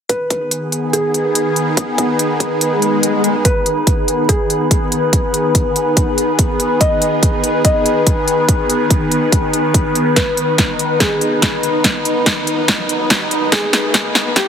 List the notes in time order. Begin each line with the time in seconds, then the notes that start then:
0.09 D#3 B3 D#4 G#4 B4, kick, closed hi-hat
0.28 B4, kick, closed hi-hat
0.51 closed hi-hat
0.72 B5, closed hi-hat
0.93 G#4, closed hi-hat
1.14 closed hi-hat
1.35 closed hi-hat
1.56 closed hi-hat
1.77 kick, closed hi-hat
1.98 kick, closed hi-hat
2.19 closed hi-hat
2.40 kick, closed hi-hat
2.61 closed hi-hat, swell
2.82 closed hi-hat
3.03 closed hi-hat
3.24 closed hi-hat
3.45 D#3 B3 G#4 B4, kick, closed hi-hat
3.66 closed hi-hat
3.87 kick, closed hi-hat
4.08 closed hi-hat
4.29 G#4, kick, closed hi-hat
4.50 closed hi-hat
4.71 kick, closed hi-hat
4.92 closed hi-hat
5.13 kick, closed hi-hat
5.34 closed hi-hat
5.55 kick, closed hi-hat
5.76 closed hi-hat
5.97 kick, closed hi-hat
6.18 closed hi-hat
6.39 kick, closed hi-hat
6.60 closed hi-hat
6.81 D#5, kick, closed hi-hat
7.02 closed hi-hat
7.23 kick, closed hi-hat
7.44 closed hi-hat
7.65 D#5, kick, closed hi-hat
7.86 closed hi-hat
8.07 kick, closed hi-hat
8.28 closed hi-hat
8.49 kick, closed hi-hat
8.70 closed hi-hat
8.90 kick, closed hi-hat
9.12 closed hi-hat
9.32 kick, closed hi-hat
9.53 closed hi-hat
9.74 kick, closed hi-hat
9.95 closed hi-hat
10.16 D#4 B4, kick, snare, closed hi-hat, riser
10.37 closed hi-hat
10.58 kick, snare, closed hi-hat
10.79 closed hi-hat
11.00 G#4, kick, snare, closed hi-hat
11.21 closed hi-hat
11.42 kick, snare, closed hi-hat
11.63 closed hi-hat
11.84 kick, snare, closed hi-hat
12.05 closed hi-hat
12.26 kick, snare, closed hi-hat
12.47 closed hi-hat
12.68 kick, snare, closed hi-hat
12.89 closed hi-hat
13.10 kick, snare, closed hi-hat
13.31 closed hi-hat
13.52 G#4, kick, snare, closed hi-hat
13.73 snare, closed hi-hat
13.94 kick, snare, closed hi-hat
14.15 snare, closed hi-hat
14.36 G4, kick, snare, closed hi-hat